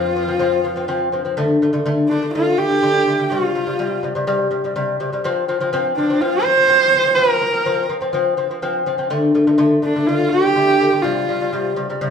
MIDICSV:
0, 0, Header, 1, 4, 480
1, 0, Start_track
1, 0, Tempo, 483871
1, 1360, Time_signature, 4, 2, 24, 8
1, 12004, End_track
2, 0, Start_track
2, 0, Title_t, "Horsehead fiddle"
2, 0, Program_c, 0, 110
2, 0, Note_on_c, 0, 65, 79
2, 1017, Note_off_c, 0, 65, 0
2, 2064, Note_on_c, 0, 62, 81
2, 2294, Note_off_c, 0, 62, 0
2, 2314, Note_on_c, 0, 65, 86
2, 2555, Note_on_c, 0, 67, 98
2, 2570, Note_off_c, 0, 65, 0
2, 3271, Note_on_c, 0, 65, 82
2, 3285, Note_off_c, 0, 67, 0
2, 3993, Note_off_c, 0, 65, 0
2, 5916, Note_on_c, 0, 62, 78
2, 6159, Note_on_c, 0, 65, 92
2, 6174, Note_off_c, 0, 62, 0
2, 6385, Note_on_c, 0, 72, 111
2, 6400, Note_off_c, 0, 65, 0
2, 7095, Note_on_c, 0, 70, 94
2, 7110, Note_off_c, 0, 72, 0
2, 7825, Note_off_c, 0, 70, 0
2, 9764, Note_on_c, 0, 62, 75
2, 9989, Note_on_c, 0, 65, 89
2, 10004, Note_off_c, 0, 62, 0
2, 10203, Note_on_c, 0, 67, 108
2, 10218, Note_off_c, 0, 65, 0
2, 10935, Note_on_c, 0, 65, 87
2, 10949, Note_off_c, 0, 67, 0
2, 11668, Note_off_c, 0, 65, 0
2, 12004, End_track
3, 0, Start_track
3, 0, Title_t, "Lute"
3, 0, Program_c, 1, 24
3, 0, Note_on_c, 1, 53, 85
3, 0, Note_on_c, 1, 60, 96
3, 113, Note_off_c, 1, 53, 0
3, 115, Note_off_c, 1, 60, 0
3, 159, Note_on_c, 1, 53, 67
3, 163, Note_on_c, 1, 60, 73
3, 256, Note_off_c, 1, 53, 0
3, 257, Note_off_c, 1, 60, 0
3, 277, Note_on_c, 1, 53, 74
3, 284, Note_on_c, 1, 60, 79
3, 375, Note_off_c, 1, 53, 0
3, 378, Note_off_c, 1, 60, 0
3, 391, Note_on_c, 1, 53, 97
3, 400, Note_on_c, 1, 60, 107
3, 588, Note_off_c, 1, 53, 0
3, 592, Note_off_c, 1, 60, 0
3, 636, Note_on_c, 1, 53, 72
3, 642, Note_on_c, 1, 60, 79
3, 734, Note_off_c, 1, 53, 0
3, 737, Note_off_c, 1, 60, 0
3, 753, Note_on_c, 1, 53, 75
3, 763, Note_on_c, 1, 60, 81
3, 853, Note_off_c, 1, 53, 0
3, 858, Note_off_c, 1, 60, 0
3, 874, Note_on_c, 1, 53, 100
3, 879, Note_on_c, 1, 60, 111
3, 1069, Note_off_c, 1, 53, 0
3, 1072, Note_off_c, 1, 60, 0
3, 1114, Note_on_c, 1, 53, 76
3, 1123, Note_on_c, 1, 60, 82
3, 1213, Note_off_c, 1, 53, 0
3, 1218, Note_off_c, 1, 60, 0
3, 1238, Note_on_c, 1, 53, 65
3, 1244, Note_on_c, 1, 60, 76
3, 1336, Note_off_c, 1, 53, 0
3, 1337, Note_off_c, 1, 60, 0
3, 1358, Note_on_c, 1, 50, 111
3, 1364, Note_on_c, 1, 57, 122
3, 1551, Note_off_c, 1, 50, 0
3, 1554, Note_off_c, 1, 57, 0
3, 1608, Note_on_c, 1, 50, 81
3, 1616, Note_on_c, 1, 57, 86
3, 1700, Note_off_c, 1, 50, 0
3, 1704, Note_off_c, 1, 57, 0
3, 1715, Note_on_c, 1, 50, 83
3, 1722, Note_on_c, 1, 57, 95
3, 1813, Note_off_c, 1, 50, 0
3, 1817, Note_off_c, 1, 57, 0
3, 1841, Note_on_c, 1, 50, 105
3, 1849, Note_on_c, 1, 57, 114
3, 2032, Note_off_c, 1, 50, 0
3, 2036, Note_off_c, 1, 57, 0
3, 2092, Note_on_c, 1, 50, 69
3, 2099, Note_on_c, 1, 57, 81
3, 2182, Note_off_c, 1, 50, 0
3, 2185, Note_off_c, 1, 57, 0
3, 2203, Note_on_c, 1, 50, 68
3, 2208, Note_on_c, 1, 57, 75
3, 2297, Note_off_c, 1, 50, 0
3, 2298, Note_off_c, 1, 57, 0
3, 2332, Note_on_c, 1, 50, 90
3, 2336, Note_on_c, 1, 57, 101
3, 2518, Note_off_c, 1, 50, 0
3, 2519, Note_off_c, 1, 57, 0
3, 2556, Note_on_c, 1, 50, 65
3, 2567, Note_on_c, 1, 57, 70
3, 2654, Note_off_c, 1, 50, 0
3, 2659, Note_off_c, 1, 57, 0
3, 2677, Note_on_c, 1, 50, 60
3, 2687, Note_on_c, 1, 57, 61
3, 2774, Note_off_c, 1, 50, 0
3, 2779, Note_off_c, 1, 57, 0
3, 2802, Note_on_c, 1, 50, 83
3, 2812, Note_on_c, 1, 57, 86
3, 2992, Note_off_c, 1, 50, 0
3, 2997, Note_off_c, 1, 57, 0
3, 3046, Note_on_c, 1, 50, 69
3, 3054, Note_on_c, 1, 57, 79
3, 3138, Note_off_c, 1, 50, 0
3, 3140, Note_off_c, 1, 57, 0
3, 3166, Note_on_c, 1, 50, 63
3, 3173, Note_on_c, 1, 57, 68
3, 3258, Note_off_c, 1, 50, 0
3, 3262, Note_off_c, 1, 57, 0
3, 3285, Note_on_c, 1, 48, 87
3, 3293, Note_on_c, 1, 55, 107
3, 3473, Note_off_c, 1, 48, 0
3, 3477, Note_off_c, 1, 55, 0
3, 3523, Note_on_c, 1, 48, 74
3, 3529, Note_on_c, 1, 55, 73
3, 3616, Note_off_c, 1, 48, 0
3, 3619, Note_off_c, 1, 55, 0
3, 3639, Note_on_c, 1, 48, 73
3, 3649, Note_on_c, 1, 55, 71
3, 3734, Note_off_c, 1, 48, 0
3, 3739, Note_off_c, 1, 55, 0
3, 3758, Note_on_c, 1, 48, 89
3, 3763, Note_on_c, 1, 55, 98
3, 3950, Note_off_c, 1, 48, 0
3, 3951, Note_off_c, 1, 55, 0
3, 3997, Note_on_c, 1, 48, 76
3, 4008, Note_on_c, 1, 55, 86
3, 4093, Note_off_c, 1, 48, 0
3, 4099, Note_off_c, 1, 55, 0
3, 4119, Note_on_c, 1, 48, 90
3, 4129, Note_on_c, 1, 55, 90
3, 4214, Note_off_c, 1, 48, 0
3, 4219, Note_off_c, 1, 55, 0
3, 4237, Note_on_c, 1, 48, 107
3, 4242, Note_on_c, 1, 55, 122
3, 4429, Note_off_c, 1, 48, 0
3, 4431, Note_off_c, 1, 55, 0
3, 4471, Note_on_c, 1, 48, 79
3, 4478, Note_on_c, 1, 55, 80
3, 4570, Note_off_c, 1, 48, 0
3, 4573, Note_off_c, 1, 55, 0
3, 4604, Note_on_c, 1, 48, 73
3, 4612, Note_on_c, 1, 55, 75
3, 4697, Note_off_c, 1, 48, 0
3, 4698, Note_off_c, 1, 55, 0
3, 4719, Note_on_c, 1, 48, 103
3, 4724, Note_on_c, 1, 55, 119
3, 4909, Note_off_c, 1, 48, 0
3, 4912, Note_off_c, 1, 55, 0
3, 4960, Note_on_c, 1, 48, 85
3, 4965, Note_on_c, 1, 55, 86
3, 5054, Note_off_c, 1, 48, 0
3, 5057, Note_off_c, 1, 55, 0
3, 5084, Note_on_c, 1, 48, 71
3, 5091, Note_on_c, 1, 55, 86
3, 5177, Note_off_c, 1, 48, 0
3, 5178, Note_off_c, 1, 55, 0
3, 5202, Note_on_c, 1, 53, 112
3, 5210, Note_on_c, 1, 60, 120
3, 5390, Note_off_c, 1, 53, 0
3, 5395, Note_off_c, 1, 60, 0
3, 5440, Note_on_c, 1, 53, 83
3, 5445, Note_on_c, 1, 60, 97
3, 5533, Note_off_c, 1, 53, 0
3, 5536, Note_off_c, 1, 60, 0
3, 5560, Note_on_c, 1, 53, 93
3, 5566, Note_on_c, 1, 60, 100
3, 5653, Note_off_c, 1, 53, 0
3, 5657, Note_off_c, 1, 60, 0
3, 5682, Note_on_c, 1, 53, 110
3, 5690, Note_on_c, 1, 60, 127
3, 5871, Note_off_c, 1, 53, 0
3, 5873, Note_off_c, 1, 60, 0
3, 5929, Note_on_c, 1, 53, 75
3, 5936, Note_on_c, 1, 60, 77
3, 6018, Note_off_c, 1, 53, 0
3, 6021, Note_off_c, 1, 60, 0
3, 6050, Note_on_c, 1, 53, 78
3, 6056, Note_on_c, 1, 60, 79
3, 6139, Note_off_c, 1, 53, 0
3, 6140, Note_off_c, 1, 60, 0
3, 6164, Note_on_c, 1, 53, 88
3, 6168, Note_on_c, 1, 60, 101
3, 6351, Note_off_c, 1, 53, 0
3, 6353, Note_off_c, 1, 60, 0
3, 6399, Note_on_c, 1, 53, 65
3, 6409, Note_on_c, 1, 60, 70
3, 6493, Note_off_c, 1, 53, 0
3, 6498, Note_off_c, 1, 60, 0
3, 6516, Note_on_c, 1, 53, 64
3, 6522, Note_on_c, 1, 60, 67
3, 6611, Note_off_c, 1, 53, 0
3, 6614, Note_off_c, 1, 60, 0
3, 6631, Note_on_c, 1, 53, 84
3, 6640, Note_on_c, 1, 60, 96
3, 6825, Note_off_c, 1, 53, 0
3, 6829, Note_off_c, 1, 60, 0
3, 6879, Note_on_c, 1, 53, 72
3, 6886, Note_on_c, 1, 60, 83
3, 6973, Note_off_c, 1, 53, 0
3, 6976, Note_off_c, 1, 60, 0
3, 6993, Note_on_c, 1, 53, 69
3, 6998, Note_on_c, 1, 60, 73
3, 7090, Note_off_c, 1, 53, 0
3, 7092, Note_off_c, 1, 60, 0
3, 7111, Note_on_c, 1, 53, 99
3, 7116, Note_on_c, 1, 60, 103
3, 7304, Note_off_c, 1, 53, 0
3, 7307, Note_off_c, 1, 60, 0
3, 7349, Note_on_c, 1, 53, 70
3, 7356, Note_on_c, 1, 60, 77
3, 7448, Note_off_c, 1, 53, 0
3, 7451, Note_off_c, 1, 60, 0
3, 7470, Note_on_c, 1, 53, 73
3, 7474, Note_on_c, 1, 60, 75
3, 7568, Note_off_c, 1, 53, 0
3, 7570, Note_off_c, 1, 60, 0
3, 7594, Note_on_c, 1, 53, 92
3, 7601, Note_on_c, 1, 60, 107
3, 7786, Note_off_c, 1, 53, 0
3, 7790, Note_off_c, 1, 60, 0
3, 7831, Note_on_c, 1, 53, 78
3, 7831, Note_on_c, 1, 60, 87
3, 7929, Note_off_c, 1, 53, 0
3, 7929, Note_off_c, 1, 60, 0
3, 7943, Note_on_c, 1, 53, 77
3, 7953, Note_on_c, 1, 60, 93
3, 8045, Note_off_c, 1, 53, 0
3, 8049, Note_off_c, 1, 60, 0
3, 8064, Note_on_c, 1, 53, 105
3, 8077, Note_on_c, 1, 60, 109
3, 8261, Note_off_c, 1, 53, 0
3, 8268, Note_off_c, 1, 60, 0
3, 8305, Note_on_c, 1, 53, 76
3, 8310, Note_on_c, 1, 60, 86
3, 8406, Note_off_c, 1, 53, 0
3, 8408, Note_off_c, 1, 60, 0
3, 8437, Note_on_c, 1, 53, 67
3, 8441, Note_on_c, 1, 60, 76
3, 8532, Note_off_c, 1, 53, 0
3, 8533, Note_off_c, 1, 60, 0
3, 8554, Note_on_c, 1, 53, 96
3, 8559, Note_on_c, 1, 60, 108
3, 8747, Note_off_c, 1, 53, 0
3, 8749, Note_off_c, 1, 60, 0
3, 8792, Note_on_c, 1, 53, 88
3, 8799, Note_on_c, 1, 60, 90
3, 8890, Note_off_c, 1, 53, 0
3, 8892, Note_off_c, 1, 60, 0
3, 8909, Note_on_c, 1, 53, 66
3, 8916, Note_on_c, 1, 60, 79
3, 9008, Note_off_c, 1, 53, 0
3, 9011, Note_off_c, 1, 60, 0
3, 9029, Note_on_c, 1, 50, 109
3, 9035, Note_on_c, 1, 57, 117
3, 9224, Note_off_c, 1, 50, 0
3, 9227, Note_off_c, 1, 57, 0
3, 9272, Note_on_c, 1, 50, 82
3, 9278, Note_on_c, 1, 57, 87
3, 9370, Note_off_c, 1, 50, 0
3, 9373, Note_off_c, 1, 57, 0
3, 9396, Note_on_c, 1, 50, 80
3, 9398, Note_on_c, 1, 57, 86
3, 9492, Note_off_c, 1, 50, 0
3, 9492, Note_off_c, 1, 57, 0
3, 9502, Note_on_c, 1, 50, 109
3, 9508, Note_on_c, 1, 57, 122
3, 9701, Note_off_c, 1, 50, 0
3, 9704, Note_off_c, 1, 57, 0
3, 9744, Note_on_c, 1, 50, 69
3, 9752, Note_on_c, 1, 57, 79
3, 9846, Note_off_c, 1, 50, 0
3, 9850, Note_off_c, 1, 57, 0
3, 9877, Note_on_c, 1, 50, 65
3, 9885, Note_on_c, 1, 57, 83
3, 9973, Note_off_c, 1, 50, 0
3, 9977, Note_off_c, 1, 57, 0
3, 10004, Note_on_c, 1, 50, 86
3, 10009, Note_on_c, 1, 57, 91
3, 10192, Note_off_c, 1, 50, 0
3, 10194, Note_off_c, 1, 57, 0
3, 10232, Note_on_c, 1, 50, 62
3, 10240, Note_on_c, 1, 57, 66
3, 10331, Note_off_c, 1, 50, 0
3, 10334, Note_off_c, 1, 57, 0
3, 10356, Note_on_c, 1, 50, 59
3, 10362, Note_on_c, 1, 57, 59
3, 10453, Note_off_c, 1, 50, 0
3, 10455, Note_off_c, 1, 57, 0
3, 10471, Note_on_c, 1, 50, 88
3, 10478, Note_on_c, 1, 57, 102
3, 10667, Note_off_c, 1, 50, 0
3, 10668, Note_off_c, 1, 57, 0
3, 10715, Note_on_c, 1, 50, 66
3, 10721, Note_on_c, 1, 57, 81
3, 10812, Note_off_c, 1, 50, 0
3, 10815, Note_off_c, 1, 57, 0
3, 10832, Note_on_c, 1, 50, 68
3, 10843, Note_on_c, 1, 57, 68
3, 10931, Note_off_c, 1, 50, 0
3, 10937, Note_off_c, 1, 57, 0
3, 10947, Note_on_c, 1, 48, 98
3, 10955, Note_on_c, 1, 55, 100
3, 11145, Note_off_c, 1, 48, 0
3, 11149, Note_off_c, 1, 55, 0
3, 11193, Note_on_c, 1, 48, 69
3, 11200, Note_on_c, 1, 55, 78
3, 11292, Note_off_c, 1, 48, 0
3, 11295, Note_off_c, 1, 55, 0
3, 11318, Note_on_c, 1, 48, 71
3, 11322, Note_on_c, 1, 55, 75
3, 11414, Note_off_c, 1, 48, 0
3, 11416, Note_off_c, 1, 55, 0
3, 11435, Note_on_c, 1, 48, 94
3, 11442, Note_on_c, 1, 55, 103
3, 11629, Note_off_c, 1, 48, 0
3, 11633, Note_off_c, 1, 55, 0
3, 11670, Note_on_c, 1, 48, 91
3, 11675, Note_on_c, 1, 55, 88
3, 11771, Note_off_c, 1, 48, 0
3, 11772, Note_off_c, 1, 55, 0
3, 11801, Note_on_c, 1, 48, 80
3, 11806, Note_on_c, 1, 55, 95
3, 11896, Note_off_c, 1, 48, 0
3, 11899, Note_off_c, 1, 55, 0
3, 11916, Note_on_c, 1, 48, 111
3, 11920, Note_on_c, 1, 55, 110
3, 12004, Note_off_c, 1, 48, 0
3, 12004, Note_off_c, 1, 55, 0
3, 12004, End_track
4, 0, Start_track
4, 0, Title_t, "Cello"
4, 0, Program_c, 2, 42
4, 0, Note_on_c, 2, 41, 73
4, 1406, Note_off_c, 2, 41, 0
4, 12004, End_track
0, 0, End_of_file